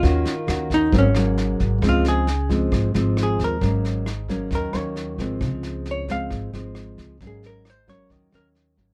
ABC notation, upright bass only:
X:1
M:4/4
L:1/8
Q:1/4=134
K:Db
V:1 name="Upright bass" clef=bass
E,, z E,,2 A,,,3 A,,, | D,,4 A,,, A,,,2 E,, | A,,,4 E,, E,,2 A,,, | D,,4 A,,, A,,,2 D,, |
A,,,4 E,, E,,2 A,,, |]